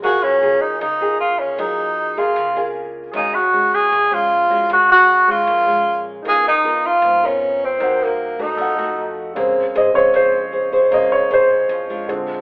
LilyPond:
<<
  \new Staff \with { instrumentName = "Grand piano" } { \time 4/4 \key ees \minor \tempo 4 = 154 <bes' f'' aes''>1~ | <bes' f'' aes''>2~ <bes' f'' aes''>8 <bes' f'' aes''>4. | <aes' des'' f'' aes''>1~ | <aes' des'' f'' aes''>1 |
<ees' bes' f''>1 | <ees' bes' c'' ges''>2 <a' ees'' ges''>2 | \key bes \minor r4 ees''8 des''8 c''8 r4. | ees''8 des''8 c''8 r2 r8 | }
  \new Staff \with { instrumentName = "Grand piano" } { \clef bass \time 4/4 \key ees \minor r1 | r1 | r1 | r1 |
r1 | r1 | \key bes \minor <des aes c'>4. <des aes c'>8 r2 | <des aes>2. <d aes c'>4 | }
  \new Staff \with { instrumentName = "Tenor saxophone" } { \time 4/4 \key ees \minor ges'8 des'4 ees'8 ees'4 f'8 des'8 | ees'4. f'4. r4 | ees'8 ges'4 aes'4 f'4. | ges'8 ges'4 f'2 r8 |
aes'8 ees'4 f'4 des'4 c'8~ | c'8 bes4 ees'2 r8 | \key bes \minor r1 | r1 | }
  \new Staff \with { instrumentName = "Nylon-string guitar" } { \time 4/4 \key ees \minor << { <bes f' aes'>4 <bes f' aes'>4 r8 <bes f' aes'>4. | <bes f' aes'>4. <bes f' aes'>4 <bes f' aes'>4. | <aes des' ges'>8 r8 <aes des' ges'>4 r8 <aes des'>4 <aes des' ges'>8 | <aes des' ges'>4. <aes des'>4 <aes des'>4. |
<ces' f' bes'>8 r8 <ces' f' bes'>4. <ces' f' bes'>4. | <bes ees' ges'>4. <a ees' ges'>4 <a ees' ges'>4. | \key bes \minor <des' aes' c''>8 r8 <des' aes' c''>8 <des' aes' c''>8 <des' aes' c''>8 r8 <des' aes' c''>8 <des' aes' c''>8~ | <des' aes' c''>4 <des' aes' c''>4. <aes d' f'>4. | } \\ { ges2 des2 | ges2 des2 | ees2 bes,2 | ees2 bes,2 |
des2 aes,2 | c2 f2 | bes2 f2 | bes2 f4 r4 | } >> }
  \new Staff \with { instrumentName = "Upright bass" } { \clef bass \time 4/4 \key ees \minor ges,2 des,2 | ges,2 des,2 | ees,2 bes,,2 | ees,2 bes,,2 |
des,2 aes,,2 | c,2 f,2 | \key bes \minor bes,,4 bes,,4 f,2 | bes,,4 bes,,4 f,4 bes,,4 | }
>>